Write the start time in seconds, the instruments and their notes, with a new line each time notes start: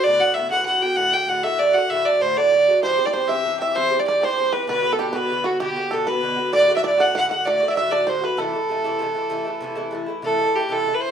0.03 bouzouki A2 D3 B3 F#4, fiddle D5
0.20 bouzouki D3 B3 F#4, fiddle F#5
0.34 bouzouki A2 D3 B3, fiddle E5
0.39 bouzouki F#4
0.51 bouzouki A2 D3 B3 F#4, fiddle F#5
0.66 bouzouki A2 D3 B3 F#4, fiddle F#5
0.82 bouzouki D3 B3 F#4, fiddle G5
0.96 bouzouki A2 D3 A3 F#4, fiddle F#5
1.12 bouzouki D3 A3 F#4, fiddle G5
1.27 bouzouki A2 D3 A3 F#4, fiddle F#5
1.43 bouzouki A2 D3 A3 F#4, fiddle E5
1.59 bouzouki A2 D3 A3 F#4, fiddle D5
1.74 bouzouki A3 F#4, fiddle F#5
1.78 bouzouki D3
1.90 bouzouki A2 D3 A3 F#4, fiddle E5
2.05 bouzouki D3 A3 F#4, fiddle D5
2.20 bouzouki A2 D3 A3 F#4, fiddle C5
2.37 bouzouki A2 D3 A3 F#4, fiddle D5
2.51 bouzouki A2 D3 A3 F#4
2.68 bouzouki D3 A3 F#4
2.83 bouzouki G2 E3 C4 G4, fiddle C5, five-string banjo C5
2.98 bouzouki E3 C4 G4
3.05 fiddle D5, five-string banjo D5
3.13 bouzouki G2 E3 C4 G4, fiddle C5, five-string banjo C5
3.28 bouzouki G2 E3 C4 G4, fiddle E5, five-string banjo E5
3.45 bouzouki G2 E3 C4 G4
3.59 bouzouki E3 C4 G4, fiddle E5, five-string banjo E5
3.75 bouzouki G2 E3 C4 G4, fiddle C5, five-string banjo C5
3.91 bouzouki E3 C4 G4
3.99 five-string banjo D5, fiddle D5
4.06 bouzouki G2 E3 C4 G4, fiddle D5, five-string banjo D5
4.21 bouzouki G2 E3 C4 G4, five-string banjo C5, fiddle C5
4.36 bouzouki G2 E3 C4 G4
4.53 bouzouki E3 C4 G4, five-string banjo B4, fiddle B4
4.67 bouzouki B2 D3 B3 F#4, fiddle B4, five-string banjo B4
4.82 bouzouki D3 B3 F#4
4.92 fiddle A4, five-string banjo A4
4.99 bouzouki B2 D3 B3 F#4, five-string banjo G4, fiddle G4
5.13 bouzouki D3 B3 F#4, five-string banjo B4, fiddle B4
5.17 bouzouki B2
5.30 bouzouki B2 D3 B3 F#4
5.44 bouzouki B3 F#4, five-string banjo F#4, fiddle F#4
5.48 bouzouki D3
5.60 bouzouki B2 D3 B3 F#4, five-string banjo G4, fiddle G4
5.76 bouzouki D3 B3 F#4
5.91 bouzouki B2 D3 B3 F#4, five-string banjo A4, fiddle A4
6.06 bouzouki B2 D3 B3 F#4, five-string banjo B4, fiddle B4
6.21 bouzouki B2 D3 B3 F#4
6.37 bouzouki D3 B3 F#4
6.53 bouzouki A2 D3 A3 F#4, five-string banjo D5, fiddle D5
6.68 bouzouki D3 A3 F#4
6.76 fiddle E5, five-string banjo E5
6.83 bouzouki A2 D3 A3 F#4, five-string banjo D5, fiddle D5
6.98 bouzouki A2 D3 A3 F#4, five-string banjo F#5, fiddle F#5
7.14 bouzouki A2 D3 A3 F#4, five-string banjo F#5, fiddle F#5
7.29 bouzouki D3 A3 F#4, fiddle F#5, five-string banjo F#5
7.45 bouzouki A2 D3 A3 F#4, fiddle D5, five-string banjo D5
7.60 bouzouki D3 A3 F#4
7.68 five-string banjo E5, fiddle E5
7.76 bouzouki A2 D3 A3 F#4, fiddle E5, five-string banjo E5
7.91 bouzouki A2 D3 A3 F#4, fiddle D5, five-string banjo D5
8.03 bouzouki A2 D3, five-string banjo C5, fiddle D5
8.09 bouzouki A3 F#4, fiddle C5
8.21 bouzouki D3 A3 F#4, five-string banjo B4, fiddle B4
8.37 bouzouki C3 E3 A3 E4, five-string banjo A4, fiddle A4
8.53 bouzouki E3 A3 E4
8.69 bouzouki C3 E3 A3 E4
8.84 bouzouki C3 E3 A3 E4
8.99 bouzouki C3 E3 A3 E4
9.15 bouzouki E3 A3 E4
9.30 bouzouki C3 E3 A3 E4
9.45 bouzouki E3 A3 E4
9.61 bouzouki C3 E3 A3 E4
9.75 bouzouki C3 E3 A3 E4
9.91 bouzouki C3 E3 A3 E4
10.06 bouzouki E3 A3 E4
10.22 bouzouki C3 E3 A3 E4, fiddle A4
10.37 bouzouki C3 E3 A3 E4
10.45 bouzouki E3 A3 E4
10.55 fiddle G4
10.60 bouzouki E3 A3 E4
10.69 bouzouki C3 E3 A3 E4, fiddle A4
10.85 bouzouki C3 E3 A3 E4
10.92 bouzouki E3 A3 E4, fiddle B4
11.01 fiddle C5
11.08 bouzouki E4